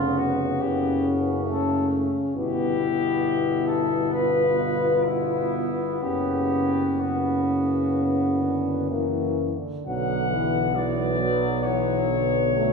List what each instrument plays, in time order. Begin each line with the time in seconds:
Already playing: tuba F1, trombone C#3, trombone section B3, french horn section C#4, flugelhorn F4
0.18 flugelhorn F#4
0.61 tuba F#1, french horn section C#4, flugelhorn G4
1.47 trombone section A3, flugelhorn A4
2.35 tuba G1, trombone B2, trombone section B3, french horn section E4, flugelhorn G4
3.67 flugelhorn A4
4.12 french horn section F4, flugelhorn B4
5.05 flugelhorn E4
6.01 tuba F#1, trombone C#3, french horn section C#4, flugelhorn G4
6.99 trombone C#3, flugelhorn F#4
8.42 trombone D3
8.90 trombone E3, trombone section A#3
9.56 trombone D3
9.85 tuba B1, trombone D3, trombone section F#3, french horn section B3, flugelhorn F#5
10.30 trombone section E3
10.74 trombone E3, trombone section F#3, flugelhorn D5
11.20 trombone F#3
11.63 trombone E3, flugelhorn C#5
12.09 trombone D3
12.53 trombone section F#3, french horn section A3